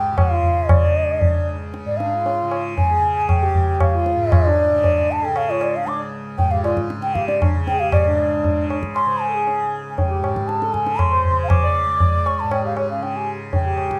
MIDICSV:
0, 0, Header, 1, 5, 480
1, 0, Start_track
1, 0, Tempo, 517688
1, 645, Time_signature, 7, 2, 24, 8
1, 5922, Tempo, 509338
1, 13093, End_track
2, 0, Start_track
2, 0, Title_t, "Bansuri"
2, 0, Program_c, 0, 73
2, 0, Note_on_c, 0, 79, 92
2, 162, Note_on_c, 0, 77, 90
2, 176, Note_off_c, 0, 79, 0
2, 640, Note_on_c, 0, 74, 81
2, 654, Note_off_c, 0, 77, 0
2, 1366, Note_off_c, 0, 74, 0
2, 1728, Note_on_c, 0, 74, 74
2, 1836, Note_on_c, 0, 77, 90
2, 1850, Note_off_c, 0, 74, 0
2, 2444, Note_off_c, 0, 77, 0
2, 2565, Note_on_c, 0, 80, 90
2, 2979, Note_off_c, 0, 80, 0
2, 2979, Note_on_c, 0, 80, 64
2, 3050, Note_on_c, 0, 79, 91
2, 3064, Note_off_c, 0, 80, 0
2, 3474, Note_off_c, 0, 79, 0
2, 3474, Note_on_c, 0, 79, 64
2, 3532, Note_on_c, 0, 77, 84
2, 3546, Note_off_c, 0, 79, 0
2, 4015, Note_on_c, 0, 74, 99
2, 4028, Note_off_c, 0, 77, 0
2, 4742, Note_on_c, 0, 81, 95
2, 4756, Note_off_c, 0, 74, 0
2, 4865, Note_on_c, 0, 79, 84
2, 4878, Note_off_c, 0, 81, 0
2, 4978, Note_on_c, 0, 77, 96
2, 4992, Note_off_c, 0, 79, 0
2, 5105, Note_on_c, 0, 73, 85
2, 5119, Note_off_c, 0, 77, 0
2, 5218, Note_on_c, 0, 74, 79
2, 5232, Note_off_c, 0, 73, 0
2, 5340, Note_on_c, 0, 77, 88
2, 5354, Note_off_c, 0, 74, 0
2, 5446, Note_on_c, 0, 86, 91
2, 5460, Note_off_c, 0, 77, 0
2, 5564, Note_off_c, 0, 86, 0
2, 5916, Note_on_c, 0, 79, 102
2, 6039, Note_on_c, 0, 77, 90
2, 6053, Note_off_c, 0, 79, 0
2, 6156, Note_off_c, 0, 77, 0
2, 6162, Note_on_c, 0, 74, 66
2, 6274, Note_off_c, 0, 74, 0
2, 6520, Note_on_c, 0, 79, 90
2, 6636, Note_on_c, 0, 77, 87
2, 6650, Note_off_c, 0, 79, 0
2, 6755, Note_off_c, 0, 77, 0
2, 6761, Note_on_c, 0, 74, 71
2, 6876, Note_off_c, 0, 74, 0
2, 7141, Note_on_c, 0, 79, 96
2, 7250, Note_on_c, 0, 77, 95
2, 7264, Note_off_c, 0, 79, 0
2, 7366, Note_off_c, 0, 77, 0
2, 7371, Note_on_c, 0, 74, 85
2, 8056, Note_off_c, 0, 74, 0
2, 8337, Note_on_c, 0, 84, 95
2, 8584, Note_on_c, 0, 80, 82
2, 8598, Note_off_c, 0, 84, 0
2, 9060, Note_off_c, 0, 80, 0
2, 9238, Note_on_c, 0, 80, 56
2, 9311, Note_on_c, 0, 79, 81
2, 9325, Note_off_c, 0, 80, 0
2, 9777, Note_on_c, 0, 81, 87
2, 9791, Note_off_c, 0, 79, 0
2, 10015, Note_on_c, 0, 80, 83
2, 10029, Note_off_c, 0, 81, 0
2, 10265, Note_on_c, 0, 84, 88
2, 10279, Note_off_c, 0, 80, 0
2, 10673, Note_off_c, 0, 84, 0
2, 10679, Note_on_c, 0, 77, 78
2, 10734, Note_on_c, 0, 86, 107
2, 10748, Note_off_c, 0, 77, 0
2, 11462, Note_on_c, 0, 85, 90
2, 11476, Note_off_c, 0, 86, 0
2, 11587, Note_on_c, 0, 81, 78
2, 11601, Note_off_c, 0, 85, 0
2, 11703, Note_on_c, 0, 79, 87
2, 11717, Note_off_c, 0, 81, 0
2, 11816, Note_off_c, 0, 79, 0
2, 11834, Note_on_c, 0, 77, 72
2, 11934, Note_off_c, 0, 77, 0
2, 11950, Note_on_c, 0, 73, 68
2, 12051, Note_off_c, 0, 73, 0
2, 12063, Note_on_c, 0, 77, 74
2, 12182, Note_on_c, 0, 79, 73
2, 12196, Note_off_c, 0, 77, 0
2, 12308, Note_on_c, 0, 80, 64
2, 12322, Note_off_c, 0, 79, 0
2, 12417, Note_off_c, 0, 80, 0
2, 12668, Note_on_c, 0, 79, 74
2, 13093, Note_off_c, 0, 79, 0
2, 13093, End_track
3, 0, Start_track
3, 0, Title_t, "Harmonium"
3, 0, Program_c, 1, 20
3, 0, Note_on_c, 1, 67, 73
3, 283, Note_on_c, 1, 65, 60
3, 297, Note_off_c, 1, 67, 0
3, 766, Note_on_c, 1, 62, 53
3, 780, Note_off_c, 1, 65, 0
3, 1452, Note_off_c, 1, 62, 0
3, 1845, Note_on_c, 1, 62, 50
3, 1972, Note_off_c, 1, 62, 0
3, 1973, Note_on_c, 1, 65, 59
3, 2535, Note_off_c, 1, 65, 0
3, 2695, Note_on_c, 1, 68, 63
3, 3172, Note_on_c, 1, 67, 66
3, 3187, Note_off_c, 1, 68, 0
3, 3658, Note_on_c, 1, 65, 63
3, 3665, Note_off_c, 1, 67, 0
3, 4135, Note_on_c, 1, 62, 59
3, 4147, Note_off_c, 1, 65, 0
3, 4851, Note_on_c, 1, 69, 61
3, 4870, Note_off_c, 1, 62, 0
3, 5089, Note_on_c, 1, 65, 58
3, 5094, Note_off_c, 1, 69, 0
3, 5325, Note_on_c, 1, 62, 58
3, 5333, Note_off_c, 1, 65, 0
3, 5550, Note_on_c, 1, 74, 59
3, 5570, Note_off_c, 1, 62, 0
3, 5667, Note_off_c, 1, 74, 0
3, 6008, Note_on_c, 1, 68, 50
3, 6039, Note_off_c, 1, 68, 0
3, 6044, Note_on_c, 1, 67, 67
3, 6162, Note_on_c, 1, 65, 64
3, 6167, Note_off_c, 1, 67, 0
3, 6387, Note_off_c, 1, 65, 0
3, 6645, Note_on_c, 1, 67, 65
3, 6870, Note_off_c, 1, 67, 0
3, 6882, Note_on_c, 1, 62, 59
3, 6997, Note_off_c, 1, 62, 0
3, 7189, Note_on_c, 1, 68, 51
3, 7249, Note_off_c, 1, 68, 0
3, 7257, Note_on_c, 1, 67, 70
3, 7478, Note_off_c, 1, 67, 0
3, 7508, Note_on_c, 1, 62, 71
3, 8185, Note_off_c, 1, 62, 0
3, 8453, Note_on_c, 1, 72, 56
3, 8640, Note_off_c, 1, 72, 0
3, 8645, Note_on_c, 1, 69, 44
3, 8700, Note_off_c, 1, 69, 0
3, 8706, Note_on_c, 1, 68, 59
3, 9148, Note_off_c, 1, 68, 0
3, 9418, Note_on_c, 1, 67, 56
3, 9901, Note_on_c, 1, 69, 64
3, 9911, Note_off_c, 1, 67, 0
3, 10377, Note_on_c, 1, 72, 65
3, 10392, Note_off_c, 1, 69, 0
3, 10869, Note_off_c, 1, 72, 0
3, 10870, Note_on_c, 1, 74, 69
3, 11807, Note_on_c, 1, 67, 50
3, 11847, Note_off_c, 1, 74, 0
3, 12039, Note_on_c, 1, 61, 52
3, 12055, Note_off_c, 1, 67, 0
3, 12290, Note_off_c, 1, 61, 0
3, 12294, Note_on_c, 1, 67, 49
3, 12513, Note_off_c, 1, 67, 0
3, 12768, Note_on_c, 1, 67, 55
3, 13093, Note_off_c, 1, 67, 0
3, 13093, End_track
4, 0, Start_track
4, 0, Title_t, "Tanpura"
4, 0, Program_c, 2, 104
4, 0, Note_on_c, 2, 37, 59
4, 0, Note_on_c, 2, 44, 59
4, 0, Note_on_c, 2, 49, 61
4, 118, Note_off_c, 2, 49, 0
4, 118, Note_on_c, 2, 49, 58
4, 660, Note_off_c, 2, 49, 0
4, 660, Note_on_c, 2, 49, 59
4, 1184, Note_off_c, 2, 37, 0
4, 1188, Note_on_c, 2, 37, 58
4, 1711, Note_off_c, 2, 44, 0
4, 1715, Note_on_c, 2, 44, 60
4, 2246, Note_off_c, 2, 49, 0
4, 2246, Note_on_c, 2, 49, 61
4, 2775, Note_off_c, 2, 49, 0
4, 2775, Note_on_c, 2, 49, 62
4, 3300, Note_off_c, 2, 37, 0
4, 3304, Note_on_c, 2, 37, 63
4, 3844, Note_off_c, 2, 44, 0
4, 3848, Note_on_c, 2, 44, 66
4, 4375, Note_off_c, 2, 49, 0
4, 4375, Note_on_c, 2, 49, 58
4, 4898, Note_off_c, 2, 49, 0
4, 4898, Note_on_c, 2, 49, 58
4, 5424, Note_off_c, 2, 37, 0
4, 5428, Note_on_c, 2, 37, 60
4, 5953, Note_off_c, 2, 44, 0
4, 5957, Note_on_c, 2, 44, 57
4, 6483, Note_off_c, 2, 49, 0
4, 6483, Note_on_c, 2, 49, 59
4, 7029, Note_off_c, 2, 49, 0
4, 7029, Note_on_c, 2, 49, 61
4, 7366, Note_off_c, 2, 44, 0
4, 7366, Note_on_c, 2, 44, 57
4, 7895, Note_off_c, 2, 49, 0
4, 7895, Note_on_c, 2, 49, 56
4, 8440, Note_off_c, 2, 49, 0
4, 8440, Note_on_c, 2, 49, 58
4, 8967, Note_off_c, 2, 37, 0
4, 8971, Note_on_c, 2, 37, 51
4, 9508, Note_off_c, 2, 44, 0
4, 9508, Note_on_c, 2, 44, 61
4, 10035, Note_off_c, 2, 49, 0
4, 10035, Note_on_c, 2, 49, 57
4, 10559, Note_off_c, 2, 49, 0
4, 10559, Note_on_c, 2, 49, 61
4, 11078, Note_off_c, 2, 37, 0
4, 11082, Note_on_c, 2, 37, 57
4, 11602, Note_off_c, 2, 44, 0
4, 11606, Note_on_c, 2, 44, 56
4, 12147, Note_off_c, 2, 49, 0
4, 12147, Note_on_c, 2, 49, 58
4, 12677, Note_off_c, 2, 49, 0
4, 12677, Note_on_c, 2, 49, 57
4, 13093, Note_off_c, 2, 37, 0
4, 13093, Note_off_c, 2, 44, 0
4, 13093, Note_off_c, 2, 49, 0
4, 13093, End_track
5, 0, Start_track
5, 0, Title_t, "Tabla"
5, 164, Note_on_c, 9, 60, 80
5, 164, Note_on_c, 9, 64, 73
5, 257, Note_off_c, 9, 60, 0
5, 257, Note_off_c, 9, 64, 0
5, 403, Note_on_c, 9, 64, 55
5, 495, Note_off_c, 9, 64, 0
5, 643, Note_on_c, 9, 60, 91
5, 643, Note_on_c, 9, 64, 89
5, 735, Note_off_c, 9, 60, 0
5, 735, Note_off_c, 9, 64, 0
5, 1126, Note_on_c, 9, 63, 74
5, 1126, Note_on_c, 9, 64, 74
5, 1218, Note_off_c, 9, 63, 0
5, 1218, Note_off_c, 9, 64, 0
5, 1611, Note_on_c, 9, 62, 81
5, 1704, Note_off_c, 9, 62, 0
5, 1857, Note_on_c, 9, 62, 60
5, 1949, Note_off_c, 9, 62, 0
5, 2095, Note_on_c, 9, 63, 77
5, 2188, Note_off_c, 9, 63, 0
5, 2332, Note_on_c, 9, 60, 56
5, 2424, Note_off_c, 9, 60, 0
5, 2574, Note_on_c, 9, 63, 85
5, 2574, Note_on_c, 9, 64, 76
5, 2667, Note_off_c, 9, 63, 0
5, 2667, Note_off_c, 9, 64, 0
5, 3050, Note_on_c, 9, 60, 68
5, 3050, Note_on_c, 9, 64, 63
5, 3143, Note_off_c, 9, 60, 0
5, 3143, Note_off_c, 9, 64, 0
5, 3289, Note_on_c, 9, 64, 53
5, 3382, Note_off_c, 9, 64, 0
5, 3528, Note_on_c, 9, 60, 82
5, 3528, Note_on_c, 9, 64, 73
5, 3620, Note_off_c, 9, 60, 0
5, 3620, Note_off_c, 9, 64, 0
5, 3765, Note_on_c, 9, 62, 62
5, 3858, Note_off_c, 9, 62, 0
5, 4006, Note_on_c, 9, 60, 93
5, 4006, Note_on_c, 9, 64, 90
5, 4098, Note_off_c, 9, 60, 0
5, 4098, Note_off_c, 9, 64, 0
5, 4489, Note_on_c, 9, 63, 80
5, 4489, Note_on_c, 9, 64, 69
5, 4582, Note_off_c, 9, 63, 0
5, 4582, Note_off_c, 9, 64, 0
5, 4967, Note_on_c, 9, 60, 80
5, 5060, Note_off_c, 9, 60, 0
5, 5202, Note_on_c, 9, 60, 61
5, 5295, Note_off_c, 9, 60, 0
5, 5446, Note_on_c, 9, 63, 81
5, 5538, Note_off_c, 9, 63, 0
5, 5920, Note_on_c, 9, 63, 77
5, 5920, Note_on_c, 9, 64, 72
5, 6014, Note_off_c, 9, 63, 0
5, 6014, Note_off_c, 9, 64, 0
5, 6163, Note_on_c, 9, 60, 60
5, 6258, Note_off_c, 9, 60, 0
5, 6282, Note_on_c, 9, 37, 59
5, 6376, Note_off_c, 9, 37, 0
5, 6407, Note_on_c, 9, 62, 66
5, 6501, Note_off_c, 9, 62, 0
5, 6522, Note_on_c, 9, 62, 60
5, 6616, Note_off_c, 9, 62, 0
5, 6645, Note_on_c, 9, 37, 63
5, 6739, Note_off_c, 9, 37, 0
5, 6767, Note_on_c, 9, 62, 59
5, 6861, Note_off_c, 9, 62, 0
5, 6894, Note_on_c, 9, 60, 78
5, 6894, Note_on_c, 9, 64, 75
5, 6988, Note_off_c, 9, 60, 0
5, 6988, Note_off_c, 9, 64, 0
5, 7135, Note_on_c, 9, 62, 60
5, 7229, Note_off_c, 9, 62, 0
5, 7370, Note_on_c, 9, 60, 89
5, 7370, Note_on_c, 9, 64, 81
5, 7464, Note_off_c, 9, 60, 0
5, 7464, Note_off_c, 9, 64, 0
5, 7859, Note_on_c, 9, 63, 70
5, 7859, Note_on_c, 9, 64, 67
5, 7953, Note_off_c, 9, 63, 0
5, 7953, Note_off_c, 9, 64, 0
5, 8106, Note_on_c, 9, 60, 55
5, 8200, Note_off_c, 9, 60, 0
5, 8222, Note_on_c, 9, 37, 54
5, 8316, Note_off_c, 9, 37, 0
5, 8346, Note_on_c, 9, 60, 74
5, 8440, Note_off_c, 9, 60, 0
5, 8829, Note_on_c, 9, 63, 73
5, 8923, Note_off_c, 9, 63, 0
5, 9309, Note_on_c, 9, 63, 75
5, 9309, Note_on_c, 9, 64, 66
5, 9403, Note_off_c, 9, 63, 0
5, 9403, Note_off_c, 9, 64, 0
5, 9551, Note_on_c, 9, 60, 59
5, 9645, Note_off_c, 9, 60, 0
5, 9668, Note_on_c, 9, 37, 55
5, 9762, Note_off_c, 9, 37, 0
5, 9789, Note_on_c, 9, 62, 66
5, 9883, Note_off_c, 9, 62, 0
5, 9910, Note_on_c, 9, 62, 60
5, 10005, Note_off_c, 9, 62, 0
5, 10024, Note_on_c, 9, 37, 58
5, 10118, Note_off_c, 9, 37, 0
5, 10142, Note_on_c, 9, 62, 55
5, 10236, Note_off_c, 9, 62, 0
5, 10260, Note_on_c, 9, 60, 79
5, 10260, Note_on_c, 9, 64, 71
5, 10354, Note_off_c, 9, 60, 0
5, 10354, Note_off_c, 9, 64, 0
5, 10501, Note_on_c, 9, 64, 52
5, 10596, Note_off_c, 9, 64, 0
5, 10740, Note_on_c, 9, 60, 90
5, 10740, Note_on_c, 9, 64, 83
5, 10835, Note_off_c, 9, 60, 0
5, 10835, Note_off_c, 9, 64, 0
5, 11214, Note_on_c, 9, 63, 75
5, 11214, Note_on_c, 9, 64, 72
5, 11308, Note_off_c, 9, 63, 0
5, 11308, Note_off_c, 9, 64, 0
5, 11457, Note_on_c, 9, 60, 56
5, 11551, Note_off_c, 9, 60, 0
5, 11697, Note_on_c, 9, 60, 77
5, 11791, Note_off_c, 9, 60, 0
5, 11934, Note_on_c, 9, 60, 61
5, 12028, Note_off_c, 9, 60, 0
5, 12179, Note_on_c, 9, 63, 75
5, 12273, Note_off_c, 9, 63, 0
5, 12653, Note_on_c, 9, 63, 74
5, 12653, Note_on_c, 9, 64, 68
5, 12747, Note_off_c, 9, 63, 0
5, 12747, Note_off_c, 9, 64, 0
5, 12886, Note_on_c, 9, 60, 56
5, 12980, Note_off_c, 9, 60, 0
5, 13010, Note_on_c, 9, 37, 55
5, 13093, Note_off_c, 9, 37, 0
5, 13093, End_track
0, 0, End_of_file